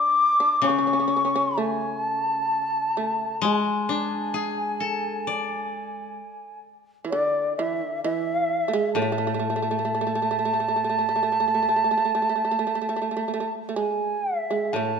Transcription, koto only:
0.62 3.43 C#3 soft
3.42 6.18 G#3 medium
3.89 5.73 D4 soft
4.34 6.19 G#4 soft
4.80 6.65 A4 soft
5.27 7.11 D5 soft
8.95 11.81 A2 medium
14.73 15.00 A2 soft

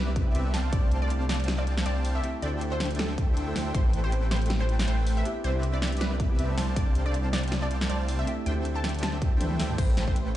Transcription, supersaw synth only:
0.00 0.33 C4 medium
0.00 0.33 G4 medium
0.00 0.33 B4 medium
0.00 0.33 D5 medium
0.00 0.33 E5 loud
0.35 0.52 C4 loud
0.35 0.52 G4 medium
0.35 0.52 B4 medium
0.35 0.52 D5 medium
0.35 0.52 E5 loud
0.54 0.71 C4 loud
0.54 0.71 C5 medium
0.54 0.71 D5 medium
0.54 0.71 F5 medium
0.54 0.71 G5 medium
0.54 0.71 A5 loud
0.73 0.89 C4 medium
0.73 0.89 C5 medium
0.73 0.90 D5 medium
0.73 0.89 F5 medium
0.73 0.90 G5 medium
0.73 0.89 A5 medium
0.92 1.84 C4 medium
0.92 1.84 C5 medium
0.92 1.84 D5 medium
0.92 1.84 F5 medium
0.92 1.84 G5 medium
0.92 1.84 A5 medium
1.86 2.23 C4 medium
1.86 2.23 C5 medium
1.86 2.23 D5 medium
1.86 2.23 F5 medium
1.86 2.23 G5 medium
1.86 2.23 A5 medium
2.42 3.35 D4 medium
2.42 3.35 A4 medium
2.42 3.35 C5 medium
2.42 3.35 E5 medium
2.42 3.35 G5 medium
3.37 3.54 D4 loud
3.37 3.54 A4 medium
3.37 3.54 C5 medium
3.37 3.54 E5 medium
3.37 3.54 G5 loud
3.56 3.73 D4 loud
3.56 3.73 A4 medium
3.56 3.73 C5 medium
3.56 3.73 E5 medium
3.56 3.73 G5 loud
3.75 3.91 A3 medium
3.75 3.91 A4 medium
3.75 3.91 B4 medium
3.75 3.91 C5 medium
3.75 3.91 G5 medium
3.93 4.86 A3 medium
3.93 4.86 A4 medium
3.93 4.86 B4 medium
3.93 4.86 C5 medium
3.93 4.86 G5 medium
4.88 5.24 A3 medium
4.88 5.24 A4 medium
4.88 5.24 B4 medium
4.88 5.24 C5 medium
4.88 5.24 G5 medium
5.44 6.37 C4 medium
5.44 6.37 G4 medium
5.44 6.37 B4 medium
5.44 6.37 D5 medium
5.44 6.37 E5 loud
6.39 6.56 C4 loud
6.39 6.56 G4 loud
6.39 6.56 B4 medium
6.39 6.56 D5 loud
6.39 6.56 E5 loud
6.58 6.74 C4 loud
6.58 6.74 C5 medium
6.58 6.74 D5 medium
6.58 6.74 F5 medium
6.58 6.74 G5 medium
6.58 6.74 A5 loud
6.76 6.93 C4 medium
6.76 6.93 C5 medium
6.76 6.93 D5 medium
6.76 6.93 F5 medium
6.76 6.93 G5 medium
6.76 6.93 A5 medium
6.95 7.88 C4 medium
6.95 7.88 C5 medium
6.95 7.88 D5 medium
6.95 7.88 F5 medium
6.95 7.88 G5 medium
6.95 7.88 A5 medium
7.90 8.26 C4 medium
7.90 8.26 C5 medium
7.90 8.26 D5 medium
7.90 8.26 F5 medium
7.90 8.26 G5 medium
7.90 8.26 A5 medium
8.46 9.39 D4 medium
8.46 9.39 A4 medium
8.46 9.39 C5 medium
8.46 9.39 E5 medium
8.46 9.39 G5 loud
9.41 9.57 D4 loud
9.41 9.57 A4 medium
9.41 9.57 C5 medium
9.41 9.57 E5 medium
9.41 9.57 G5 loud
9.59 9.76 D4 medium
9.59 9.76 A4 medium
9.59 9.76 C5 medium
9.59 9.76 E5 medium
9.59 9.76 G5 loud
9.78 9.95 A3 medium
9.78 9.95 A4 medium
9.78 9.95 B4 medium
9.78 9.95 C5 medium
9.78 9.95 G5 medium
9.97 10.37 A3 medium
9.97 10.37 A4 medium
9.97 10.37 B4 medium
9.97 10.37 C5 medium
9.97 10.37 G5 medium

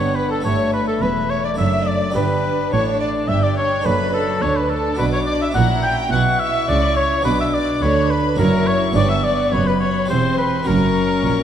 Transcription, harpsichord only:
0.00 0.41 G2 soft
0.00 0.41 B3 soft
0.00 0.41 D4 soft
0.00 0.42 G4 soft
0.40 1.53 A3 soft
0.40 1.54 E4 soft
0.40 1.54 A4 soft
0.45 0.98 G2 soft
1.02 1.55 E2 soft
1.54 2.11 A3 soft
1.54 2.10 D4 soft
1.54 2.13 A4 soft
1.59 2.11 F#2 soft
2.10 2.68 B3 soft
2.10 2.69 D4 soft
2.10 3.81 G4 soft
2.15 2.68 G2 soft
2.72 3.25 A2 soft
3.29 3.82 G2 soft
3.81 4.93 D4 soft
3.81 4.94 A4 soft
3.86 4.39 F#2 soft
4.42 4.95 D2 soft
4.95 5.52 D4 soft
4.95 5.53 F#4 soft
4.99 5.52 B2 soft
5.51 7.19 C#4 soft
5.51 7.20 E4 soft
5.51 7.21 F#4 soft
5.56 6.08 A#2 soft
6.13 6.65 B2 soft
6.69 7.22 C#3 soft
7.21 8.33 B3 soft
7.21 8.34 D4 soft
7.21 8.35 F#4 soft
7.25 7.78 B2 soft
7.83 8.35 D3 soft
8.35 8.92 C#4 soft
8.35 8.93 E4 soft
8.35 8.93 F#4 soft
8.39 8.92 F#2 soft
8.92 9.49 B3 soft
8.92 9.50 D4 soft
8.92 10.06 G4 soft
8.96 9.49 G2 soft
9.52 10.06 F#2 soft
10.05 10.63 C4 soft
10.05 10.64 E4 soft
10.05 10.65 G4 soft
10.10 10.63 E2 soft
10.63 11.43 C#4 soft
10.63 11.43 F#4 soft
10.67 11.21 F#2 soft
11.26 11.43 A#2 soft

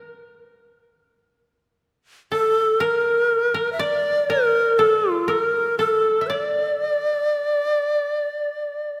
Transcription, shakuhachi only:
2.33 2.83 A4 medium
2.81 3.72 A#4 medium
3.73 3.82 E5 medium
3.81 4.32 D5 medium
4.30 4.80 A#4 medium
4.78 5.11 A4 medium
5.11 5.31 F4 medium
5.29 5.78 A#4 medium
5.78 6.29 A4 medium
6.27 6.39 C#5 medium
6.39 9.00 D5 medium

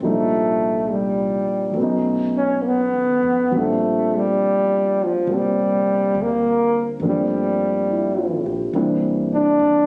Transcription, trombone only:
0.03 0.93 A3 medium
0.91 1.77 G3 medium
2.37 2.63 C#4 medium
2.62 2.68 A#3 soft
2.67 3.60 B3 medium
3.58 4.18 A3 medium
4.17 5.06 G3 medium
5.05 5.38 F3 medium
5.36 6.24 G3 medium
6.22 6.87 A#3 medium
7.08 8.46 G3 medium
9.34 9.86 D4 medium

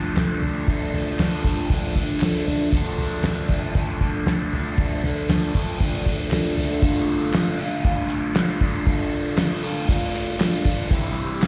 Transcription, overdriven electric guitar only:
0.00 0.15 D3 medium
0.00 0.17 F3 medium
0.00 0.18 A3 medium
0.00 0.18 D4 medium
0.16 0.66 D3 medium
0.16 0.44 F3 medium
0.16 0.43 A3 medium
0.16 0.40 D4 medium
0.40 0.68 F3 medium
0.40 0.68 A3 medium
0.40 0.69 D4 medium
0.67 1.18 D3 medium
0.67 0.96 F3 medium
0.67 0.95 A3 medium
0.67 0.93 D4 loud
0.93 1.20 F3 medium
0.93 1.21 A3 medium
0.93 1.22 D4 medium
1.19 1.46 D3 medium
1.19 1.45 F3 medium
1.19 1.44 A3 medium
1.19 1.43 D4 medium
1.44 1.70 D3 medium
1.44 1.71 F3 medium
1.44 1.72 A3 medium
1.44 1.73 D4 medium
1.70 1.99 D3 medium
1.70 1.97 F3 medium
1.70 1.96 A3 medium
1.70 1.96 D4 medium
1.96 2.21 D3 medium
1.96 2.22 F3 medium
1.96 2.23 A3 medium
1.96 2.24 D4 medium
2.21 2.71 D3 medium
2.21 2.50 F3 medium
2.21 2.49 A3 medium
2.21 2.47 D4 medium
2.48 2.72 F3 medium
2.48 2.74 A3 medium
2.48 2.75 D4 medium
2.72 3.23 D3 medium
2.72 3.01 F3 loud
2.72 2.99 A3 loud
2.72 2.97 D4 loud
2.98 3.24 F3 medium
2.98 3.25 A3 medium
2.98 3.26 D4 medium
3.23 3.51 D3 medium
3.23 3.50 F3 medium
3.23 3.49 A3 medium
3.23 3.48 D4 medium
3.48 3.73 D3 medium
3.48 3.74 F3 medium
3.48 3.75 A3 medium
3.48 3.76 D4 medium
3.73 4.03 D3 medium
3.73 4.02 F3 medium
3.73 4.02 A3 medium
3.73 4.00 D4 medium
4.00 4.26 D3 medium
4.00 4.27 F3 medium
4.00 4.28 A3 medium
4.00 4.29 D4 loud
4.26 4.77 D3 medium
4.26 4.55 F3 medium
4.26 4.54 A3 medium
4.26 4.52 D4 medium
4.53 4.77 F3 medium
4.53 4.79 A3 medium
4.53 4.79 D4 medium
4.77 5.28 D3 medium
4.77 5.06 F3 medium
4.77 5.04 A3 medium
4.77 5.02 D4 loud
5.04 5.29 F3 medium
5.04 5.30 A3 medium
5.04 5.30 D4 medium
5.29 5.55 D3 medium
5.29 5.55 F3 medium
5.29 5.53 A3 medium
5.29 5.52 D4 medium
5.53 5.78 D3 medium
5.53 5.79 F3 medium
5.53 5.81 A3 medium
5.53 5.82 D4 medium
5.80 6.07 D3 medium
5.80 6.07 F3 medium
5.80 6.06 A3 medium
5.80 6.04 D4 medium
6.05 6.30 D3 medium
6.05 6.32 F3 medium
6.05 6.32 A3 medium
6.05 6.33 D4 medium
6.31 6.81 D3 medium
6.31 6.59 F3 medium
6.31 6.57 A3 medium
6.31 6.56 D4 medium
6.57 6.83 F3 medium
6.57 6.82 A3 medium
6.57 6.81 D4 medium
6.83 7.33 D3 medium
6.83 7.34 A3 loud
6.83 7.34 D4 loud
6.83 7.35 F4 loud
7.33 7.59 D3 medium
7.33 7.59 A3 medium
7.33 7.60 D4 loud
7.33 7.61 F4 medium
7.59 7.82 D3 medium
7.59 7.83 A3 medium
7.59 7.85 D4 medium
7.59 7.84 F4 loud
7.84 8.35 D3 medium
7.84 8.35 A3 medium
7.84 8.36 D4 medium
7.84 8.37 F4 loud
8.36 8.61 D3 medium
8.36 8.61 A3 medium
8.36 8.62 D4 medium
8.36 8.62 F4 loud
8.62 8.86 D3 medium
8.62 8.87 A3 medium
8.62 8.87 D4 medium
8.62 8.88 F4 medium
8.87 9.37 D3 loud
8.87 9.38 A3 loud
8.87 9.39 D4 loud
8.87 9.40 F4 loud
9.39 9.62 D3 medium
9.39 9.62 A3 medium
9.39 9.63 D4 loud
9.39 9.63 F4 medium
9.63 9.87 D3 medium
9.63 9.88 A3 medium
9.63 9.89 D4 medium
9.63 9.89 F4 medium
9.89 10.38 D3 medium
9.89 10.39 A3 loud
9.89 10.39 D4 loud
9.89 10.40 F4 medium
10.39 10.63 D3 medium
10.39 10.64 A3 medium
10.39 10.65 D4 medium
10.39 10.65 F4 medium
10.64 10.89 D3 medium
10.64 10.89 A3 medium
10.64 10.89 D4 medium
10.64 10.90 F4 loud
10.89 11.41 C3 loud
10.89 11.41 E3 loud
10.89 11.42 G3 loud
10.89 11.43 C4 loud
10.89 11.43 E4 loud
11.41 11.47 C3 medium
11.41 11.47 E3 loud
11.41 11.47 G3 loud
11.41 11.47 C4 loud
11.41 11.47 E4 medium

